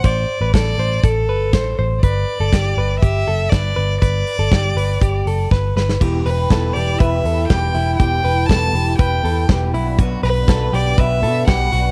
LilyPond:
<<
  \new Staff \with { instrumentName = "Violin" } { \time 4/4 \key e \minor \tempo 4 = 121 d''4 d''4 a'4. r8 | d''2 e''4 d''4 | d''2. r4 | r8 b'4 d''8 e''4 g''4 |
g''4 a''4 g''4 r4 | r8 b'4 d''8 e''4 fis''4 | }
  \new Staff \with { instrumentName = "Clean electric guitar" } { \time 4/4 \key e \minor c''8. b'16 a'8 c''8 a'8 b'8 c''8 c''8 | b'8. a'16 g'8 b'8 g'8 a'8 b'8 b'8 | b'8. a'16 g'8 b'8 g'8 a'8 b'8 b'8 | g'8 b'8 a'8 g'8 b'8 a'8 g'8 e'8 |
g'8 b'8 a'8 g'8 b'8 a'8 g'8 e'8 | fis'8 b'8 a'8 g'8 b'8 a'8 g'8 fis'8 | }
  \new Staff \with { instrumentName = "Clean electric guitar" } { \time 4/4 \key e \minor r1 | r1 | r1 | <e b e' g' b'>8 <e' g' b'>8 <e b e' g' b'>8 <e' g' b'>8 <b e' g' b'>8 <e' g' b'>8 <e b e' g' b'>8 <e' g' b'>8 |
<e b e' g' b'>8 <e' g' b'>8 <e b e' g' b'>8 <e' g' b'>8 <b e' g' b'>8 <e' g' b'>8 <e b e' g' b'>8 <b d' fis' b'>8 | <b, fis b d' fis' b'>8 <b d' fis' b'>8 <b, fis b d' fis' b'>8 <b d' fis' b'>8 <b d' fis' b'>8 <b d' fis' b'>8 <b, fis b d' fis' b'>8 <b d' fis' b'>8 | }
  \new Staff \with { instrumentName = "Picked electric bass" } { \clef bass \time 4/4 \key e \minor a,,8 r16 a,,16 a,,8 a,,8 a,,8 g,,8 a,,8 a,,8 | g,,8 r16 g,,16 g,,8 g,,8 g,,8 fis,,8 g,,8 g,,8 | g,,8 r16 g,,16 g,,8 g,,8 g,,8 fis,,8 g,,8 g,,8 | e,,8 e,,8 e,,8 e,,8 e,,8 e,8 e,,8 e,,8 |
e,,8 e,,8 e,,8 e,,8 e,,8 e,8 e,,8 b,,8~ | b,,8 b,,8 b,,8 b,,8 b,,8 b,8 b,,8 b,,8 | }
  \new DrumStaff \with { instrumentName = "Drums" } \drummode { \time 4/4 <hh bd>4 <hh bd sn>4 <hh bd>4 <hh bd sn>4 | <hh bd>4 <hh bd sn>4 <hh bd>4 <hh bd sn>4 | <hh bd>8 hho8 <hh bd sn>8 hho8 <hh bd>8 hho8 <bd sn>8 sn16 sn16 | <cymc bd>8 hho8 <hh bd sn>8 hho8 <hh bd>8 hho8 <hh bd sn>8 hho8 |
<hh bd>8 hho8 <hh bd sn>8 hho8 <hh bd>8 hho8 <hh bd sn>8 hho8 | <hh bd>8 hho8 <hh bd sn>8 hho8 <hh bd>8 hho8 <hh bd sn>8 hho8 | }
>>